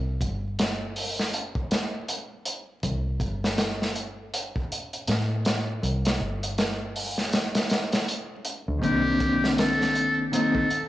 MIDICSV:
0, 0, Header, 1, 5, 480
1, 0, Start_track
1, 0, Tempo, 750000
1, 1811, Time_signature, 4, 2, 24, 8
1, 6966, End_track
2, 0, Start_track
2, 0, Title_t, "Muted trumpet"
2, 0, Program_c, 0, 59
2, 5647, Note_on_c, 0, 67, 102
2, 6090, Note_off_c, 0, 67, 0
2, 6133, Note_on_c, 0, 69, 96
2, 6573, Note_off_c, 0, 69, 0
2, 6613, Note_on_c, 0, 69, 89
2, 6952, Note_off_c, 0, 69, 0
2, 6966, End_track
3, 0, Start_track
3, 0, Title_t, "Clean electric guitar"
3, 0, Program_c, 1, 27
3, 5625, Note_on_c, 1, 51, 73
3, 5641, Note_on_c, 1, 58, 69
3, 5657, Note_on_c, 1, 60, 74
3, 5673, Note_on_c, 1, 62, 87
3, 6575, Note_off_c, 1, 51, 0
3, 6583, Note_off_c, 1, 58, 0
3, 6590, Note_off_c, 1, 60, 0
3, 6599, Note_off_c, 1, 62, 0
3, 6604, Note_on_c, 1, 51, 77
3, 6610, Note_on_c, 1, 58, 75
3, 6618, Note_on_c, 1, 60, 71
3, 6626, Note_on_c, 1, 63, 91
3, 6817, Note_off_c, 1, 51, 0
3, 6820, Note_off_c, 1, 58, 0
3, 6824, Note_off_c, 1, 60, 0
3, 6828, Note_off_c, 1, 63, 0
3, 6966, End_track
4, 0, Start_track
4, 0, Title_t, "Fingered electric bass"
4, 0, Program_c, 2, 33
4, 0, Note_on_c, 2, 36, 90
4, 109, Note_off_c, 2, 36, 0
4, 133, Note_on_c, 2, 31, 76
4, 1793, Note_off_c, 2, 31, 0
4, 1815, Note_on_c, 2, 36, 87
4, 2029, Note_off_c, 2, 36, 0
4, 2049, Note_on_c, 2, 31, 75
4, 3231, Note_off_c, 2, 31, 0
4, 3252, Note_on_c, 2, 45, 88
4, 3713, Note_off_c, 2, 45, 0
4, 3730, Note_on_c, 2, 36, 92
4, 3947, Note_off_c, 2, 36, 0
4, 3969, Note_on_c, 2, 31, 81
4, 5391, Note_off_c, 2, 31, 0
4, 5555, Note_on_c, 2, 38, 85
4, 5640, Note_off_c, 2, 38, 0
4, 5650, Note_on_c, 2, 36, 85
4, 6966, Note_off_c, 2, 36, 0
4, 6966, End_track
5, 0, Start_track
5, 0, Title_t, "Drums"
5, 132, Note_on_c, 9, 36, 83
5, 134, Note_on_c, 9, 42, 66
5, 196, Note_off_c, 9, 36, 0
5, 198, Note_off_c, 9, 42, 0
5, 376, Note_on_c, 9, 42, 77
5, 381, Note_on_c, 9, 38, 108
5, 440, Note_off_c, 9, 42, 0
5, 445, Note_off_c, 9, 38, 0
5, 615, Note_on_c, 9, 46, 76
5, 679, Note_off_c, 9, 46, 0
5, 765, Note_on_c, 9, 38, 37
5, 829, Note_off_c, 9, 38, 0
5, 856, Note_on_c, 9, 42, 87
5, 920, Note_off_c, 9, 42, 0
5, 994, Note_on_c, 9, 36, 93
5, 1058, Note_off_c, 9, 36, 0
5, 1094, Note_on_c, 9, 42, 67
5, 1099, Note_on_c, 9, 38, 98
5, 1158, Note_off_c, 9, 42, 0
5, 1163, Note_off_c, 9, 38, 0
5, 1334, Note_on_c, 9, 42, 82
5, 1398, Note_off_c, 9, 42, 0
5, 1571, Note_on_c, 9, 42, 68
5, 1635, Note_off_c, 9, 42, 0
5, 1812, Note_on_c, 9, 42, 78
5, 1814, Note_on_c, 9, 36, 95
5, 1876, Note_off_c, 9, 42, 0
5, 1878, Note_off_c, 9, 36, 0
5, 2047, Note_on_c, 9, 36, 91
5, 2049, Note_on_c, 9, 42, 57
5, 2111, Note_off_c, 9, 36, 0
5, 2113, Note_off_c, 9, 42, 0
5, 2202, Note_on_c, 9, 38, 52
5, 2266, Note_off_c, 9, 38, 0
5, 2291, Note_on_c, 9, 42, 89
5, 2292, Note_on_c, 9, 38, 114
5, 2355, Note_off_c, 9, 42, 0
5, 2356, Note_off_c, 9, 38, 0
5, 2444, Note_on_c, 9, 38, 42
5, 2508, Note_off_c, 9, 38, 0
5, 2530, Note_on_c, 9, 42, 63
5, 2594, Note_off_c, 9, 42, 0
5, 2775, Note_on_c, 9, 42, 94
5, 2839, Note_off_c, 9, 42, 0
5, 2917, Note_on_c, 9, 36, 93
5, 2981, Note_off_c, 9, 36, 0
5, 3020, Note_on_c, 9, 42, 68
5, 3084, Note_off_c, 9, 42, 0
5, 3156, Note_on_c, 9, 42, 41
5, 3220, Note_off_c, 9, 42, 0
5, 3248, Note_on_c, 9, 42, 87
5, 3259, Note_on_c, 9, 38, 106
5, 3312, Note_off_c, 9, 42, 0
5, 3323, Note_off_c, 9, 38, 0
5, 3488, Note_on_c, 9, 42, 59
5, 3495, Note_on_c, 9, 38, 106
5, 3552, Note_off_c, 9, 42, 0
5, 3559, Note_off_c, 9, 38, 0
5, 3733, Note_on_c, 9, 42, 75
5, 3797, Note_off_c, 9, 42, 0
5, 3873, Note_on_c, 9, 42, 61
5, 3883, Note_on_c, 9, 38, 100
5, 3937, Note_off_c, 9, 42, 0
5, 3947, Note_off_c, 9, 38, 0
5, 4116, Note_on_c, 9, 42, 68
5, 4180, Note_off_c, 9, 42, 0
5, 4212, Note_on_c, 9, 42, 73
5, 4215, Note_on_c, 9, 38, 107
5, 4276, Note_off_c, 9, 42, 0
5, 4279, Note_off_c, 9, 38, 0
5, 4453, Note_on_c, 9, 46, 68
5, 4517, Note_off_c, 9, 46, 0
5, 4594, Note_on_c, 9, 38, 37
5, 4658, Note_off_c, 9, 38, 0
5, 4690, Note_on_c, 9, 42, 83
5, 4695, Note_on_c, 9, 38, 112
5, 4754, Note_off_c, 9, 42, 0
5, 4759, Note_off_c, 9, 38, 0
5, 4830, Note_on_c, 9, 42, 75
5, 4834, Note_on_c, 9, 38, 94
5, 4894, Note_off_c, 9, 42, 0
5, 4898, Note_off_c, 9, 38, 0
5, 4925, Note_on_c, 9, 42, 74
5, 4937, Note_on_c, 9, 38, 95
5, 4989, Note_off_c, 9, 42, 0
5, 5001, Note_off_c, 9, 38, 0
5, 5071, Note_on_c, 9, 42, 74
5, 5077, Note_on_c, 9, 38, 86
5, 5135, Note_off_c, 9, 42, 0
5, 5141, Note_off_c, 9, 38, 0
5, 5174, Note_on_c, 9, 42, 86
5, 5238, Note_off_c, 9, 42, 0
5, 5406, Note_on_c, 9, 42, 63
5, 5470, Note_off_c, 9, 42, 0
5, 5649, Note_on_c, 9, 36, 106
5, 5653, Note_on_c, 9, 42, 75
5, 5713, Note_off_c, 9, 36, 0
5, 5717, Note_off_c, 9, 42, 0
5, 5889, Note_on_c, 9, 42, 62
5, 5890, Note_on_c, 9, 36, 96
5, 5953, Note_off_c, 9, 42, 0
5, 5954, Note_off_c, 9, 36, 0
5, 6041, Note_on_c, 9, 38, 44
5, 6105, Note_off_c, 9, 38, 0
5, 6132, Note_on_c, 9, 42, 90
5, 6138, Note_on_c, 9, 38, 102
5, 6196, Note_off_c, 9, 42, 0
5, 6202, Note_off_c, 9, 38, 0
5, 6280, Note_on_c, 9, 38, 39
5, 6344, Note_off_c, 9, 38, 0
5, 6370, Note_on_c, 9, 42, 60
5, 6434, Note_off_c, 9, 42, 0
5, 6612, Note_on_c, 9, 42, 89
5, 6676, Note_off_c, 9, 42, 0
5, 6750, Note_on_c, 9, 36, 89
5, 6814, Note_off_c, 9, 36, 0
5, 6850, Note_on_c, 9, 42, 61
5, 6914, Note_off_c, 9, 42, 0
5, 6966, End_track
0, 0, End_of_file